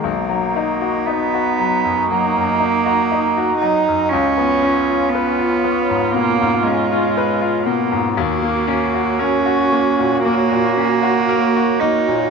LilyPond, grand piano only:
\new Staff \with { instrumentName = "Grand piano" } { \time 4/4 \key ees \minor \tempo 4 = 59 b,,16 fis16 dis'16 fis'16 dis'16 fis'16 fis16 fis,16 fis16 fis,16 dis'16 fis'16 dis'16 fis'16 fis16 fis,16 | des,16 ces'16 des'16 f'16 ces''16 f'16 ces'16 aes,16 ces16 aes,16 des'16 f'16 ces''16 f'16 ces16 aes,16 | ees,16 bes16 des'16 ges'16 bes'16 ges'16 bes16 bes,16 bes16 bes,16 des'16 ges'16 bes'16 ges'16 bes16 bes,16 | }